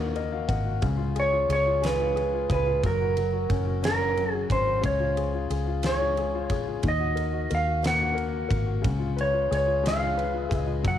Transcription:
0.00 0.45 D#2 loud
0.00 0.79 D#3 medium
0.00 0.79 A#3 medium
0.00 0.33 F#4 medium
0.00 0.16 A#4 medium
0.00 0.13 D#5 medium
0.16 0.47 A#4 medium
0.16 0.31 D#5 medium
0.16 ride soft
0.32 0.64 F#4 medium
0.32 0.48 F5 medium
0.48 0.84 G#1 medium
0.48 0.81 A#4 medium
0.48 0.80 F#5 medium
0.48 kick medium
0.48 ride medium
0.65 0.82 F#4 medium
0.82 1.46 C#2 loud
0.82 2.79 C#3 medium
0.82 kick loud
0.82 ride medium
0.97 1.31 F4 medium
1.16 1.48 G#4 medium
1.16 ride medium
1.20 1.49 C#5 loud
1.32 1.65 F4 medium
1.49 2.45 C#2 loud
1.49 2.14 G#4 medium
1.49 1.85 C#5 loud
1.49 ride medium
1.66 1.97 F4 medium
1.82 2.79 G#3 medium
1.82 snare loud
1.82 ride medium
1.86 2.51 B4 loud
1.99 2.32 F4 medium
2.16 2.48 G#4 medium
2.16 ride soft
2.34 2.65 F4 medium
2.49 2.81 C#2 loud
2.49 2.82 G#4 medium
2.49 2.82 B4 medium
2.49 kick medium
2.49 ride medium
2.66 2.83 F4 medium
2.83 3.46 F#1 loud
2.83 3.15 F#3 medium
2.83 3.81 A#4 medium
2.83 kick loud
2.83 ride medium
3.01 3.31 F#4 medium
3.17 4.15 F#3 medium
3.17 ride soft
3.33 3.65 F#4 medium
3.49 4.46 F#1 medium
3.49 3.81 C#4 medium
3.49 kick medium
3.49 ride medium
3.66 3.98 F#4 medium
3.83 4.49 C#4 medium
3.83 4.32 A#4 medium
3.83 snare loud
3.83 ride medium
3.99 4.32 F#4 medium
4.17 4.81 F#3 medium
4.17 ride soft
4.32 4.65 F#4 medium
4.32 4.47 G#4 medium
4.50 4.81 G#1 medium
4.50 4.83 C#4 medium
4.50 4.85 C5 loud
4.50 kick medium
4.50 ride medium
4.67 4.83 F#4 medium
4.81 5.46 C#2 loud
4.81 6.79 C#3 medium
4.81 kick loud
4.81 ride medium
4.86 5.47 C#5 medium
5.00 5.33 F4 medium
5.17 5.49 G#4 medium
5.17 ride soft
5.34 5.66 F4 medium
5.50 6.50 C#2 medium
5.50 6.17 G#4 medium
5.50 ride medium
5.67 6.00 F4 medium
5.83 6.81 G#3 medium
5.83 6.81 C#5 medium
5.83 snare loud
5.83 ride medium
6.01 6.33 F4 medium
6.17 6.50 G#4 medium
6.17 ride soft
6.35 6.66 F4 medium
6.50 6.82 A#1 medium
6.50 6.84 G#4 medium
6.50 kick medium
6.50 ride medium
6.67 6.84 F4 medium
6.83 7.47 D#2 loud
6.83 8.80 D#3 medium
6.83 kick loud
6.83 ride medium
6.88 7.55 D#5 medium
7.00 7.32 F#4 medium
7.16 7.49 A#4 medium
7.16 ride soft
7.33 7.66 F#4 medium
7.51 8.47 D#2 loud
7.51 8.13 A#4 medium
7.51 ride medium
7.55 7.87 F5 medium
7.67 7.99 F#4 medium
7.83 8.81 A#3 medium
7.83 8.57 F#5 loud
7.83 snare loud
7.83 ride medium
8.00 8.31 F#4 medium
8.15 8.47 A#4 medium
8.15 ride soft
8.33 8.65 F#4 medium
8.49 8.86 G#1 loud
8.49 8.82 A#4 medium
8.49 kick medium
8.49 ride medium
8.66 8.83 F#4 medium
8.82 9.47 C#2 loud
8.82 10.79 C#3 medium
8.82 kick loud
8.82 ride medium
8.99 9.32 F4 medium
9.17 10.16 B4 medium
9.17 ride soft
9.21 9.51 C#5 medium
9.34 9.65 F4 medium
9.51 10.48 C#2 medium
9.51 10.48 G#4 medium
9.51 9.87 C#5 medium
9.51 ride medium
9.67 10.01 F4 medium
9.84 10.81 G#3 medium
9.84 snare loud
9.84 ride medium
9.88 10.59 F5 loud
10.03 10.32 F4 medium
10.17 10.83 B4 medium
10.17 ride soft
10.34 10.65 F4 medium
10.49 10.83 C#2 loud
10.49 10.83 G#4 medium
10.49 kick medium
10.49 ride medium
10.59 10.87 D#5 loud
10.67 10.84 F4 medium
10.83 10.98 F#1 medium
10.83 10.98 F#3 medium
10.83 kick loud
10.83 ride medium
10.88 10.98 F#5 medium

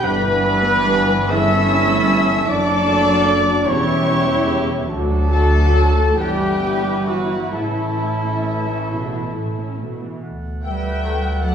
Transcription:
0.05 2.46 G1 loud
0.05 2.45 G2 loud
0.05 0.24 D3 medium
0.05 1.30 E3 loud
0.05 1.29 B3 loud
0.05 1.28 D4 medium
0.05 1.30 D4 loud
0.05 1.33 B4 loud
0.05 1.30 B4 loud
0.05 1.29 B4 loud
0.05 1.31 B4 loud
0.05 1.28 B5 loud
0.25 0.46 E3 medium
0.45 0.67 G3 medium
0.66 0.89 B3 medium
0.87 1.09 G3 loud
1.08 1.30 E3 medium
1.30 1.49 C#3 medium
1.30 2.47 E3 medium
1.30 2.48 C#4 loud
1.30 2.49 C#4 loud
1.30 2.50 E4 loud
1.30 2.47 A4 loud
1.30 2.20 E5 loud
1.30 2.22 E5 loud
1.30 2.49 E5 loud
1.30 2.48 E5 loud
1.30 2.49 E6 loud
1.50 1.71 E3 medium
1.70 1.91 G3 medium
1.90 2.10 A3 medium
2.09 2.29 G3 medium
2.29 2.49 E3 medium
2.48 3.65 F#1 loud
2.48 3.65 F#2 loud
2.48 2.67 D3 medium
2.48 3.67 F#3 loud
2.48 3.64 D4 loud
2.48 3.64 D4 medium
2.48 3.65 D4 loud
2.48 3.65 A4 loud
2.48 3.68 D5 loud
2.48 3.67 D5 loud
2.48 3.68 D5 loud
2.48 3.67 D6 loud
2.68 2.88 F#3 medium
2.87 3.07 A3 medium
3.06 3.27 F#3 medium
3.26 3.47 D3 medium
3.46 3.67 F#3 medium
3.66 4.90 E1 loud
3.66 4.90 E2 loud
3.66 3.86 C#3 medium
3.66 4.87 G3 loud
3.66 4.90 C#4 loud
3.66 4.90 E4 loud
3.66 4.72 G4 loud
3.66 4.89 C#5 loud
3.66 4.90 C#5 loud
3.66 4.89 C#6 loud
3.86 4.07 E3 medium
4.07 4.28 G3 medium
4.27 4.48 E3 medium
4.48 4.69 C#3 medium
4.68 4.89 E3 medium
4.88 6.18 D2 loud
4.88 5.09 D3 medium
4.88 6.13 F#3 loud
4.88 6.13 D4 loud
4.88 6.18 F#4 medium
4.88 6.14 A4 loud
5.10 5.31 F#3 medium
5.30 5.53 A3 medium
5.30 6.14 A3 loud
5.30 6.19 A4 loud
5.30 6.14 A4 loud
5.30 6.19 A4 loud
5.30 6.15 A4 loud
5.30 6.13 A5 loud
5.52 5.74 F#3 medium
5.72 5.95 D3 medium
5.95 6.18 F#3 medium
6.16 7.51 G1 medium
6.16 7.51 G2 medium
6.16 6.38 E3 medium
6.16 7.37 E3 medium
6.16 7.08 G3 loud
6.16 7.37 B3 medium
6.16 9.98 E4 loud
6.16 7.07 G4 loud
6.16 7.08 G4 medium
6.16 7.08 G4 loud
6.16 7.53 B4 medium
6.16 7.07 G5 loud
6.39 6.62 G3 medium
6.62 6.85 B3 medium
6.84 7.07 G3 medium
7.06 7.31 E3 medium
7.06 7.54 F#3 medium
7.06 7.53 F#4 medium
7.06 7.52 F#4 medium
7.06 7.54 F#4 medium
7.06 7.52 F#5 loud
7.31 7.54 G3 medium
7.51 10.03 A1 medium
7.51 8.81 A2 medium
7.51 7.75 C#3 medium
7.51 9.85 E3 medium
7.51 9.81 E3 medium
7.51 9.89 C#4 medium
7.51 9.76 E4 medium
7.51 9.77 E4 medium
7.51 9.81 E4 medium
7.51 9.89 A4 medium
7.51 9.81 E5 medium
7.77 8.00 E3 medium
8.00 8.22 A3 medium
8.23 8.45 C#4 medium
8.45 8.67 A3 medium
8.68 8.90 E3 medium
8.91 9.32 B2 medium
8.91 9.13 C#3 medium
9.13 9.35 E3 medium
9.36 9.82 A2 medium
9.36 9.58 A3 medium
9.60 9.82 C#4 medium
9.82 10.24 B2 medium
9.82 10.04 A3 medium
10.05 10.24 E3 medium
10.23 11.55 D2 medium
10.23 11.55 A4 medium
10.23 11.55 F#5 medium
10.64 11.39 G3 medium
10.64 11.39 B4 loud
10.64 11.39 E5 medium
10.64 11.39 G5 loud
11.03 11.17 D3 medium
11.03 11.17 F#3 medium
11.03 11.18 A3 medium
11.03 11.19 A4 medium
11.42 11.55 F#3 medium
11.42 11.55 F#4 medium
11.42 11.55 A4 loud
11.42 11.55 D5 medium
11.42 11.55 F#5 medium
11.42 11.55 F#5 loud

